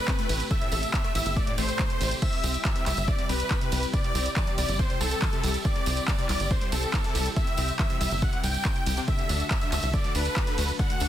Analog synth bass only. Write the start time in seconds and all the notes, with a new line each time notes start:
0.29 A1
0.72 A1
1.15 A1
1.26 G1
1.58 A1
2.01 A1
2.43 C2
2.86 C2
2.97 G1
3.29 C2
3.72 C2
4.15 C2
4.58 C2
4.69 G1
5.01 C2
5.44 C2
5.87 C2
6.29 C2
6.40 G1
6.72 C2
7.15 C2
7.58 C2
8.01 C2
8.11 G1
8.44 C2
8.87 C2
9.29 D2
9.72 D2
9.83 C2
10.15 D2
10.58 D2
11.01 D2